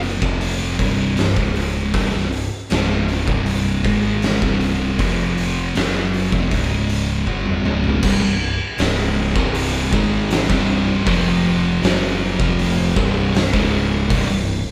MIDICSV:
0, 0, Header, 1, 4, 480
1, 0, Start_track
1, 0, Tempo, 760456
1, 1226, Time_signature, 4, 2, 24, 8
1, 9287, End_track
2, 0, Start_track
2, 0, Title_t, "Distorted electric guitar"
2, 0, Program_c, 0, 30
2, 0, Note_on_c, 0, 42, 82
2, 0, Note_on_c, 0, 49, 91
2, 0, Note_on_c, 0, 54, 108
2, 131, Note_off_c, 0, 42, 0
2, 133, Note_off_c, 0, 49, 0
2, 134, Note_off_c, 0, 54, 0
2, 137, Note_on_c, 0, 41, 91
2, 141, Note_on_c, 0, 48, 99
2, 145, Note_on_c, 0, 53, 119
2, 493, Note_off_c, 0, 41, 0
2, 495, Note_off_c, 0, 48, 0
2, 496, Note_on_c, 0, 36, 87
2, 497, Note_off_c, 0, 53, 0
2, 499, Note_on_c, 0, 43, 94
2, 503, Note_on_c, 0, 48, 92
2, 730, Note_off_c, 0, 36, 0
2, 735, Note_off_c, 0, 43, 0
2, 737, Note_off_c, 0, 48, 0
2, 738, Note_on_c, 0, 36, 72
2, 743, Note_on_c, 0, 43, 77
2, 860, Note_off_c, 0, 36, 0
2, 862, Note_on_c, 0, 37, 84
2, 864, Note_off_c, 0, 43, 0
2, 866, Note_on_c, 0, 44, 106
2, 870, Note_on_c, 0, 49, 104
2, 1218, Note_off_c, 0, 37, 0
2, 1220, Note_off_c, 0, 44, 0
2, 1222, Note_off_c, 0, 49, 0
2, 1224, Note_on_c, 0, 36, 96
2, 1229, Note_on_c, 0, 43, 101
2, 1335, Note_off_c, 0, 36, 0
2, 1339, Note_off_c, 0, 43, 0
2, 1343, Note_on_c, 0, 36, 59
2, 1347, Note_on_c, 0, 43, 66
2, 1538, Note_off_c, 0, 36, 0
2, 1539, Note_off_c, 0, 43, 0
2, 1705, Note_on_c, 0, 37, 86
2, 1709, Note_on_c, 0, 44, 99
2, 1712, Note_on_c, 0, 49, 102
2, 2061, Note_off_c, 0, 37, 0
2, 2063, Note_off_c, 0, 44, 0
2, 2064, Note_off_c, 0, 49, 0
2, 2070, Note_on_c, 0, 36, 98
2, 2073, Note_on_c, 0, 43, 91
2, 2076, Note_on_c, 0, 48, 102
2, 2424, Note_off_c, 0, 36, 0
2, 2425, Note_off_c, 0, 43, 0
2, 2427, Note_off_c, 0, 48, 0
2, 2429, Note_on_c, 0, 44, 89
2, 2433, Note_on_c, 0, 51, 85
2, 2436, Note_on_c, 0, 56, 93
2, 2784, Note_off_c, 0, 44, 0
2, 2786, Note_off_c, 0, 51, 0
2, 2788, Note_off_c, 0, 56, 0
2, 2789, Note_on_c, 0, 36, 86
2, 2794, Note_on_c, 0, 43, 87
2, 2795, Note_on_c, 0, 48, 104
2, 3150, Note_off_c, 0, 36, 0
2, 3150, Note_on_c, 0, 41, 89
2, 3152, Note_off_c, 0, 43, 0
2, 3152, Note_off_c, 0, 48, 0
2, 3152, Note_on_c, 0, 48, 100
2, 3157, Note_on_c, 0, 53, 99
2, 3625, Note_off_c, 0, 41, 0
2, 3627, Note_off_c, 0, 48, 0
2, 3629, Note_off_c, 0, 53, 0
2, 3630, Note_on_c, 0, 42, 95
2, 3634, Note_on_c, 0, 49, 97
2, 3638, Note_on_c, 0, 54, 103
2, 3986, Note_off_c, 0, 42, 0
2, 3987, Note_off_c, 0, 49, 0
2, 3990, Note_off_c, 0, 54, 0
2, 3990, Note_on_c, 0, 41, 91
2, 3996, Note_on_c, 0, 48, 103
2, 4105, Note_off_c, 0, 41, 0
2, 4108, Note_off_c, 0, 48, 0
2, 4114, Note_on_c, 0, 37, 88
2, 4115, Note_on_c, 0, 44, 97
2, 4118, Note_on_c, 0, 49, 99
2, 4586, Note_off_c, 0, 37, 0
2, 4588, Note_off_c, 0, 44, 0
2, 4588, Note_on_c, 0, 43, 92
2, 4589, Note_off_c, 0, 49, 0
2, 4591, Note_on_c, 0, 50, 94
2, 4593, Note_on_c, 0, 55, 112
2, 4820, Note_off_c, 0, 43, 0
2, 4823, Note_on_c, 0, 37, 90
2, 4826, Note_off_c, 0, 50, 0
2, 4827, Note_off_c, 0, 55, 0
2, 4828, Note_on_c, 0, 44, 96
2, 4830, Note_on_c, 0, 49, 100
2, 5062, Note_off_c, 0, 37, 0
2, 5064, Note_off_c, 0, 44, 0
2, 5065, Note_off_c, 0, 49, 0
2, 5065, Note_on_c, 0, 36, 108
2, 5070, Note_on_c, 0, 43, 101
2, 5177, Note_off_c, 0, 36, 0
2, 5181, Note_off_c, 0, 43, 0
2, 5185, Note_on_c, 0, 36, 70
2, 5189, Note_on_c, 0, 43, 70
2, 5381, Note_off_c, 0, 36, 0
2, 5383, Note_off_c, 0, 43, 0
2, 5541, Note_on_c, 0, 37, 85
2, 5545, Note_on_c, 0, 44, 104
2, 5549, Note_on_c, 0, 49, 100
2, 5898, Note_off_c, 0, 37, 0
2, 5900, Note_off_c, 0, 44, 0
2, 5900, Note_on_c, 0, 36, 101
2, 5902, Note_on_c, 0, 43, 107
2, 5903, Note_off_c, 0, 49, 0
2, 5907, Note_on_c, 0, 48, 104
2, 6258, Note_off_c, 0, 36, 0
2, 6259, Note_off_c, 0, 43, 0
2, 6262, Note_off_c, 0, 48, 0
2, 6262, Note_on_c, 0, 44, 97
2, 6266, Note_on_c, 0, 51, 102
2, 6267, Note_on_c, 0, 56, 105
2, 6617, Note_off_c, 0, 44, 0
2, 6620, Note_off_c, 0, 51, 0
2, 6620, Note_on_c, 0, 36, 93
2, 6621, Note_off_c, 0, 56, 0
2, 6624, Note_on_c, 0, 43, 102
2, 6626, Note_on_c, 0, 48, 100
2, 6979, Note_off_c, 0, 36, 0
2, 6979, Note_on_c, 0, 41, 88
2, 6982, Note_off_c, 0, 43, 0
2, 6982, Note_off_c, 0, 48, 0
2, 6982, Note_on_c, 0, 48, 108
2, 6985, Note_on_c, 0, 53, 117
2, 7455, Note_off_c, 0, 41, 0
2, 7456, Note_off_c, 0, 48, 0
2, 7458, Note_off_c, 0, 53, 0
2, 7460, Note_on_c, 0, 42, 90
2, 7462, Note_on_c, 0, 49, 99
2, 7464, Note_on_c, 0, 54, 115
2, 7815, Note_off_c, 0, 42, 0
2, 7816, Note_off_c, 0, 49, 0
2, 7817, Note_off_c, 0, 54, 0
2, 7819, Note_on_c, 0, 41, 107
2, 7822, Note_on_c, 0, 48, 102
2, 7826, Note_on_c, 0, 53, 111
2, 8174, Note_off_c, 0, 41, 0
2, 8176, Note_off_c, 0, 48, 0
2, 8178, Note_off_c, 0, 53, 0
2, 8181, Note_on_c, 0, 36, 86
2, 8184, Note_on_c, 0, 43, 98
2, 8189, Note_on_c, 0, 48, 95
2, 8415, Note_off_c, 0, 36, 0
2, 8417, Note_off_c, 0, 43, 0
2, 8419, Note_off_c, 0, 48, 0
2, 8422, Note_on_c, 0, 36, 68
2, 8427, Note_on_c, 0, 43, 81
2, 8536, Note_off_c, 0, 36, 0
2, 8539, Note_on_c, 0, 37, 104
2, 8540, Note_off_c, 0, 43, 0
2, 8542, Note_on_c, 0, 44, 114
2, 8544, Note_on_c, 0, 49, 114
2, 8893, Note_off_c, 0, 37, 0
2, 8895, Note_off_c, 0, 44, 0
2, 8896, Note_off_c, 0, 49, 0
2, 8900, Note_on_c, 0, 36, 110
2, 8905, Note_on_c, 0, 43, 110
2, 9014, Note_off_c, 0, 36, 0
2, 9017, Note_off_c, 0, 43, 0
2, 9021, Note_on_c, 0, 36, 62
2, 9025, Note_on_c, 0, 43, 72
2, 9214, Note_off_c, 0, 36, 0
2, 9215, Note_off_c, 0, 43, 0
2, 9287, End_track
3, 0, Start_track
3, 0, Title_t, "Picked electric bass"
3, 0, Program_c, 1, 34
3, 0, Note_on_c, 1, 30, 100
3, 116, Note_off_c, 1, 30, 0
3, 138, Note_on_c, 1, 29, 97
3, 476, Note_off_c, 1, 29, 0
3, 500, Note_on_c, 1, 24, 87
3, 725, Note_off_c, 1, 24, 0
3, 748, Note_on_c, 1, 24, 75
3, 856, Note_off_c, 1, 24, 0
3, 860, Note_on_c, 1, 25, 95
3, 1199, Note_off_c, 1, 25, 0
3, 1225, Note_on_c, 1, 24, 94
3, 1337, Note_off_c, 1, 24, 0
3, 1348, Note_on_c, 1, 24, 82
3, 1572, Note_off_c, 1, 24, 0
3, 1709, Note_on_c, 1, 25, 93
3, 2045, Note_off_c, 1, 25, 0
3, 2068, Note_on_c, 1, 24, 106
3, 2405, Note_off_c, 1, 24, 0
3, 2428, Note_on_c, 1, 32, 94
3, 2766, Note_off_c, 1, 32, 0
3, 2791, Note_on_c, 1, 24, 101
3, 3128, Note_off_c, 1, 24, 0
3, 3152, Note_on_c, 1, 29, 96
3, 3609, Note_off_c, 1, 29, 0
3, 3637, Note_on_c, 1, 30, 98
3, 3971, Note_off_c, 1, 30, 0
3, 3991, Note_on_c, 1, 29, 98
3, 4105, Note_off_c, 1, 29, 0
3, 4113, Note_on_c, 1, 25, 93
3, 4569, Note_off_c, 1, 25, 0
3, 4591, Note_on_c, 1, 31, 97
3, 4816, Note_off_c, 1, 31, 0
3, 4830, Note_on_c, 1, 25, 81
3, 5055, Note_off_c, 1, 25, 0
3, 5068, Note_on_c, 1, 24, 98
3, 5183, Note_off_c, 1, 24, 0
3, 5191, Note_on_c, 1, 24, 85
3, 5415, Note_off_c, 1, 24, 0
3, 5549, Note_on_c, 1, 25, 107
3, 5885, Note_off_c, 1, 25, 0
3, 5906, Note_on_c, 1, 24, 109
3, 6243, Note_off_c, 1, 24, 0
3, 6265, Note_on_c, 1, 32, 96
3, 6602, Note_off_c, 1, 32, 0
3, 6626, Note_on_c, 1, 24, 101
3, 6962, Note_off_c, 1, 24, 0
3, 6985, Note_on_c, 1, 29, 94
3, 7440, Note_off_c, 1, 29, 0
3, 7464, Note_on_c, 1, 30, 102
3, 7799, Note_off_c, 1, 30, 0
3, 7824, Note_on_c, 1, 29, 102
3, 8159, Note_off_c, 1, 29, 0
3, 8184, Note_on_c, 1, 24, 99
3, 8407, Note_off_c, 1, 24, 0
3, 8424, Note_on_c, 1, 24, 78
3, 8535, Note_off_c, 1, 24, 0
3, 8544, Note_on_c, 1, 25, 113
3, 8878, Note_off_c, 1, 25, 0
3, 8901, Note_on_c, 1, 24, 98
3, 9013, Note_off_c, 1, 24, 0
3, 9019, Note_on_c, 1, 24, 85
3, 9244, Note_off_c, 1, 24, 0
3, 9287, End_track
4, 0, Start_track
4, 0, Title_t, "Drums"
4, 19, Note_on_c, 9, 46, 54
4, 82, Note_off_c, 9, 46, 0
4, 139, Note_on_c, 9, 36, 108
4, 202, Note_off_c, 9, 36, 0
4, 258, Note_on_c, 9, 46, 81
4, 321, Note_off_c, 9, 46, 0
4, 499, Note_on_c, 9, 46, 60
4, 500, Note_on_c, 9, 36, 97
4, 562, Note_off_c, 9, 46, 0
4, 563, Note_off_c, 9, 36, 0
4, 738, Note_on_c, 9, 46, 82
4, 751, Note_on_c, 9, 38, 111
4, 801, Note_off_c, 9, 46, 0
4, 814, Note_off_c, 9, 38, 0
4, 862, Note_on_c, 9, 36, 97
4, 925, Note_off_c, 9, 36, 0
4, 982, Note_on_c, 9, 46, 63
4, 1045, Note_off_c, 9, 46, 0
4, 1224, Note_on_c, 9, 36, 111
4, 1225, Note_on_c, 9, 46, 80
4, 1287, Note_off_c, 9, 36, 0
4, 1288, Note_off_c, 9, 46, 0
4, 1358, Note_on_c, 9, 38, 30
4, 1421, Note_off_c, 9, 38, 0
4, 1467, Note_on_c, 9, 46, 57
4, 1530, Note_off_c, 9, 46, 0
4, 1705, Note_on_c, 9, 46, 76
4, 1718, Note_on_c, 9, 38, 116
4, 1768, Note_off_c, 9, 46, 0
4, 1781, Note_off_c, 9, 38, 0
4, 1945, Note_on_c, 9, 46, 55
4, 2009, Note_off_c, 9, 46, 0
4, 2067, Note_on_c, 9, 36, 104
4, 2131, Note_off_c, 9, 36, 0
4, 2184, Note_on_c, 9, 46, 71
4, 2247, Note_off_c, 9, 46, 0
4, 2424, Note_on_c, 9, 46, 50
4, 2428, Note_on_c, 9, 36, 95
4, 2487, Note_off_c, 9, 46, 0
4, 2491, Note_off_c, 9, 36, 0
4, 2665, Note_on_c, 9, 46, 77
4, 2678, Note_on_c, 9, 38, 116
4, 2728, Note_off_c, 9, 46, 0
4, 2741, Note_off_c, 9, 38, 0
4, 2790, Note_on_c, 9, 36, 108
4, 2853, Note_off_c, 9, 36, 0
4, 2907, Note_on_c, 9, 46, 55
4, 2970, Note_off_c, 9, 46, 0
4, 3149, Note_on_c, 9, 46, 67
4, 3152, Note_on_c, 9, 36, 103
4, 3212, Note_off_c, 9, 46, 0
4, 3215, Note_off_c, 9, 36, 0
4, 3393, Note_on_c, 9, 46, 56
4, 3456, Note_off_c, 9, 46, 0
4, 3631, Note_on_c, 9, 46, 78
4, 3645, Note_on_c, 9, 38, 115
4, 3695, Note_off_c, 9, 46, 0
4, 3708, Note_off_c, 9, 38, 0
4, 3873, Note_on_c, 9, 46, 54
4, 3936, Note_off_c, 9, 46, 0
4, 3992, Note_on_c, 9, 36, 100
4, 4055, Note_off_c, 9, 36, 0
4, 4110, Note_on_c, 9, 46, 76
4, 4112, Note_on_c, 9, 36, 94
4, 4173, Note_off_c, 9, 46, 0
4, 4175, Note_off_c, 9, 36, 0
4, 4351, Note_on_c, 9, 46, 58
4, 4414, Note_off_c, 9, 46, 0
4, 4590, Note_on_c, 9, 36, 58
4, 4653, Note_off_c, 9, 36, 0
4, 4707, Note_on_c, 9, 47, 61
4, 4770, Note_off_c, 9, 47, 0
4, 4831, Note_on_c, 9, 45, 87
4, 4894, Note_off_c, 9, 45, 0
4, 4947, Note_on_c, 9, 43, 88
4, 5010, Note_off_c, 9, 43, 0
4, 5066, Note_on_c, 9, 49, 119
4, 5069, Note_on_c, 9, 36, 109
4, 5129, Note_off_c, 9, 49, 0
4, 5132, Note_off_c, 9, 36, 0
4, 5542, Note_on_c, 9, 46, 64
4, 5556, Note_on_c, 9, 38, 120
4, 5605, Note_off_c, 9, 46, 0
4, 5619, Note_off_c, 9, 38, 0
4, 5906, Note_on_c, 9, 36, 109
4, 5969, Note_off_c, 9, 36, 0
4, 6026, Note_on_c, 9, 46, 68
4, 6089, Note_off_c, 9, 46, 0
4, 6266, Note_on_c, 9, 36, 114
4, 6329, Note_off_c, 9, 36, 0
4, 6505, Note_on_c, 9, 46, 66
4, 6518, Note_on_c, 9, 38, 114
4, 6568, Note_off_c, 9, 46, 0
4, 6581, Note_off_c, 9, 38, 0
4, 6626, Note_on_c, 9, 36, 117
4, 6689, Note_off_c, 9, 36, 0
4, 6986, Note_on_c, 9, 36, 115
4, 6986, Note_on_c, 9, 46, 70
4, 7049, Note_off_c, 9, 36, 0
4, 7050, Note_off_c, 9, 46, 0
4, 7466, Note_on_c, 9, 46, 72
4, 7479, Note_on_c, 9, 38, 123
4, 7529, Note_off_c, 9, 46, 0
4, 7543, Note_off_c, 9, 38, 0
4, 7825, Note_on_c, 9, 36, 112
4, 7888, Note_off_c, 9, 36, 0
4, 7947, Note_on_c, 9, 46, 72
4, 8010, Note_off_c, 9, 46, 0
4, 8183, Note_on_c, 9, 36, 103
4, 8246, Note_off_c, 9, 36, 0
4, 8423, Note_on_c, 9, 46, 70
4, 8437, Note_on_c, 9, 38, 121
4, 8487, Note_off_c, 9, 46, 0
4, 8500, Note_off_c, 9, 38, 0
4, 8543, Note_on_c, 9, 36, 109
4, 8606, Note_off_c, 9, 36, 0
4, 8902, Note_on_c, 9, 36, 110
4, 8903, Note_on_c, 9, 46, 69
4, 8965, Note_off_c, 9, 36, 0
4, 8966, Note_off_c, 9, 46, 0
4, 9287, End_track
0, 0, End_of_file